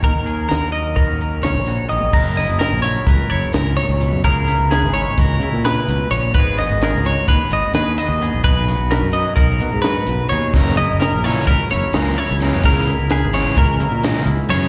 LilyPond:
<<
  \new Staff \with { instrumentName = "Clean electric guitar" } { \time 9/8 \key fis \mixolydian \tempo 4. = 86 ais'4 ais'8 dis''8 ais'4 cis''4 dis''8 | ais'8 dis''8 ais'8 cis''8 ais'8 cis''8 ais'8 cis''4 | ais'4 gis'8 cis''8 ais'4 b'4 cis''8 | b'8 dis''8 ais'8 cis''8 b'8 dis''8 b'8 dis''4 |
b'4 ais'8 dis''8 ais'4 b'4 cis''8 | ais'8 dis''8 ais'8 cis''8 ais'8 cis''8 ais'8 cis''4 | ais'4 gis'8 cis''8 ais'4 r4 cis''8 | }
  \new Staff \with { instrumentName = "Clean electric guitar" } { \time 9/8 \key fis \mixolydian << { r8 gis'8 fis'8 ais'8 b16 cis'16 ais'8 cis'8 fis'4 | <dis' e' ais'>8 e'8 ais'8 e'8 b'8 e'2 | <b e' gis'>8 e'8 b'8 e'8 fis'8 e'2 | <b fis' gis'>8 fis'8 gis'8 fis'8 gis'8 fis'8 gis'8 fis'8 <b fis' gis'>8 |
<dis' fis' gis'>8 fis'8 b'8 fis'8 fis'8 fis'8 fis'8 fis'8 <dis' fis' gis'>8 | <dis' e' ais'>8 e'8 ais'8 e'8 b'8 e'8 ais'8 e'8 <dis' e' ais'>8 | <b e' gis'>8 e'8 b'8 e'8 fis'8 e'8 ais'8 e'8 <b e' gis'>8 | } \\ { <dis fis>4. fis4. ais,4 dis8 | fis,4. fis4. gis,8 ais,8 b,8 | cis4. gis4. cis8 b,8 ais,8 | gis,4. gis4. dis4 gis,8 |
b,4. fis4. fis,4 b,8 | fis,4. fis4. cis4 fis,8 | cis4. gis4. gis,4 cis8 | } >> }
  \new Staff \with { instrumentName = "Overdriven electric guitar" } { \clef bass \time 9/8 \key fis \mixolydian r1 r8 | r1 r8 | r1 r8 | r1 r8 |
r1 r8 | <cis e ais cis'>8 r4 <cis e ais cis'>8 r4 <cis e ais cis'>8 r8 <cis e ais cis'>8 | <cis e gis cis'>8 r4 <cis e gis cis'>8 r4 <cis e gis cis'>8 r8 <cis e gis cis'>8 | }
  \new Staff \with { instrumentName = "Fingered electric bass" } { \clef bass \time 9/8 \key fis \mixolydian dis,16 dis,8. dis,2 cis,16 ais,,8 r16 ais,,16 ais,,16 | fis,,8. fis,,8 ais,,8 r16 cis,16 r16 fis,,16 r16 cis,8 r16 cis,8 fis,16 | cis,8. cis,8 gis,,8 r16 cis,8 cis16 ais,8 r16 cis,16 r16 ais,,8 | gis,,8. gis,,8 cis,8 r16 dis,16 r16 gis,,16 r16 dis,8 r16 dis,8 ais,,16 |
b,,8. b,,8 fis,8 r16 b,,8 b,16 gis,8 r16 b,,16 r16 dis,8 | fis,,8. fis,,8 ais,,8 r16 cis,16 r16 fis,,16 r16 cis,8 r16 cis,8 fis,16 | cis,8. cis,8 gis,,8 r16 cis,8 cis16 ais,8 r16 cis,16 r16 fis,8 | }
  \new DrumStaff \with { instrumentName = "Drums" } \drummode { \time 9/8 <hh bd>8 hh8 <hh sn>8 hh8 <hh bd>8 hh8 <hh sn>8 <hh sn>8 hh8 | <cymc bd>8 <hh sn>8 <hh sn>8 <hh sn>8 <hh bd>8 hh8 <hh sn>8 <hh sn>8 hh8 | <hh bd>8 <hh sn>8 <hh sn>8 hh8 <hh bd sn>8 hh8 <hh sn>8 hh8 <hh sn>8 | <hh bd>8 <hh sn>8 <hh sn>8 hh8 <hh bd sn>8 hh8 <hh sn>8 <hh sn>8 <hh sn>8 |
<hh bd>8 <hh sn>8 <hh sn>8 hh8 <hh bd>8 hh8 <hh sn>8 hh8 hh8 | <hh bd>8 hh8 <hh sn>8 hh8 <hh bd sn>8 <hh sn>8 <hh sn>8 <hh sn>8 hh8 | <hh bd>8 <hh sn>8 <hh sn>8 hh8 <hh bd>8 hh8 <hh sn>8 hh8 hh8 | }
>>